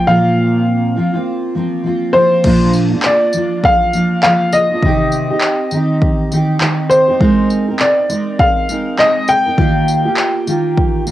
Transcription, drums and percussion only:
2.44 kick, crash
2.73 tambourine
3.02 clap
3.33 tambourine
3.64 kick
3.93 tambourine
4.23 clap
4.52 tambourine
4.83 kick
5.12 tambourine
5.41 clap
5.71 tambourine
6.02 kick
6.32 tambourine
6.61 clap
6.91 tambourine
7.21 kick
7.50 tambourine
7.79 clap
8.10 tambourine
8.40 kick
8.69 tambourine
8.99 clap
9.28 tambourine
9.58 kick
9.88 tambourine
10.16 clap
10.47 tambourine
10.77 kick
11.06 tambourine

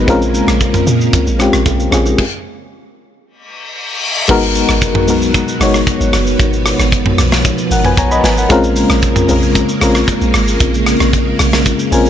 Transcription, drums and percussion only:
0.08 kick, low conga, shaker
0.22 shaker
0.34 low bongo, shaker
0.47 cross-stick, high bongo, shaker
0.61 kick, high bongo, shaker
0.74 mid tom, shaker
0.87 shaker
1.01 shaker
1.13 kick, low conga, shaker
1.27 shaker
1.39 cross-stick, low bongo, shaker
1.53 cross-stick, shaker
1.66 kick, high bongo, shaker
1.80 shaker
1.92 cross-stick, low conga, shaker
2.06 low bongo, shaker
2.18 kick, crash
4.29 kick, crash
4.43 shaker
4.55 open hi-hat, shaker
4.69 cross-stick, shaker
4.82 kick, hi-hat pedal, shaker
4.95 mid tom
5.08 open hi-hat, shaker
5.22 shaker
5.34 kick, hi-hat pedal, shaker
5.48 shaker
5.61 cross-stick, open hi-hat, shaker
5.74 cross-stick, shaker
5.87 kick, hi-hat pedal, shaker
6.01 shaker
6.13 cross-stick, open hi-hat, shaker
6.27 shaker
6.39 kick, hi-hat pedal, shaker
6.53 shaker
6.66 cross-stick, open hi-hat, shaker
6.80 cross-stick, shaker
6.92 kick, hi-hat pedal, shaker
7.06 mid tom
7.18 cross-stick, open hi-hat, shaker
7.32 cross-stick, snare, shaker
7.45 kick, hi-hat pedal, shaker
7.58 shaker
7.71 open hi-hat, shaker
7.85 mid tom, shaker
7.97 kick, hi-hat pedal, shaker
8.11 shaker
8.24 snare, open hi-hat, shaker
8.38 shaker
8.50 kick, hi-hat pedal, shaker
8.64 shaker
8.76 open hi-hat, shaker
8.90 cross-stick, shaker
9.02 kick, hi-hat pedal, shaker
9.16 mid tom, shaker
9.29 open hi-hat, shaker
9.43 shaker
9.55 kick, hi-hat pedal, shaker
9.69 shaker
9.81 cross-stick, open hi-hat, shaker
9.95 cross-stick, shaker
10.08 kick, hi-hat pedal, shaker
10.21 shaker
10.34 cross-stick, open hi-hat, shaker
10.48 shaker
10.60 kick, hi-hat pedal, shaker
10.74 shaker
10.86 cross-stick, open hi-hat, shaker
11.00 cross-stick, shaker
11.13 kick, hi-hat pedal, shaker
11.39 cross-stick, open hi-hat, shaker
11.53 cross-stick, snare, shaker
11.66 kick, hi-hat pedal, shaker
11.79 shaker
11.92 open hi-hat, shaker
12.06 shaker

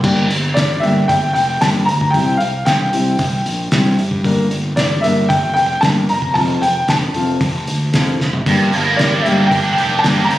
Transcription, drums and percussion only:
0.04 kick, crash
0.31 open hi-hat
0.57 snare, open hi-hat
0.83 open hi-hat
1.09 kick, open hi-hat
1.36 open hi-hat
1.61 snare, open hi-hat
1.89 open hi-hat
2.01 kick
2.14 kick, open hi-hat
2.41 open hi-hat
2.66 snare, open hi-hat
2.93 open hi-hat
3.19 kick, open hi-hat
3.46 open hi-hat
3.72 snare, open hi-hat
3.99 open hi-hat
4.11 kick
4.24 kick, open hi-hat
4.51 open hi-hat
4.77 snare, open hi-hat
5.04 open hi-hat
5.30 kick, open hi-hat
5.57 open hi-hat
5.83 snare, open hi-hat
6.09 open hi-hat
6.22 kick
6.35 kick, open hi-hat
6.63 open hi-hat
6.88 snare, open hi-hat
7.14 open hi-hat
7.41 kick, open hi-hat
7.67 open hi-hat
7.94 snare, open hi-hat
8.21 snare
8.33 floor tom
8.46 kick, open hi-hat
8.73 open hi-hat
8.99 snare, open hi-hat
9.26 open hi-hat
9.51 kick, open hi-hat
9.78 open hi-hat
10.04 snare, open hi-hat
10.31 open hi-hat

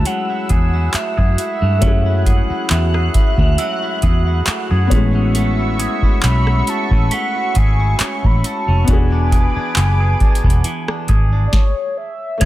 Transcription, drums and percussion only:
0.05 closed hi-hat
0.49 kick, closed hi-hat
0.94 clap, closed hi-hat
1.18 kick
1.38 closed hi-hat
1.82 kick, closed hi-hat
2.26 kick, closed hi-hat
2.70 clap, closed hi-hat
2.94 cross-stick
3.14 kick, closed hi-hat
3.38 kick
3.58 closed hi-hat
4.02 kick, closed hi-hat
4.47 clap, closed hi-hat
4.91 kick, closed hi-hat
5.35 closed hi-hat
5.80 closed hi-hat
6.02 kick
6.23 clap, closed hi-hat
6.47 cross-stick
6.67 closed hi-hat
6.91 kick
7.11 closed hi-hat
7.55 kick, closed hi-hat
8.00 clap, closed hi-hat
8.24 kick
8.44 closed hi-hat
8.88 kick, closed hi-hat
9.32 kick, closed hi-hat
9.76 clap, closed hi-hat
10.20 kick, closed hi-hat
10.35 closed hi-hat
10.44 kick
10.50 closed hi-hat
10.64 closed hi-hat
10.88 cross-stick
11.08 kick, closed hi-hat
11.53 kick, snare
12.41 kick, closed hi-hat

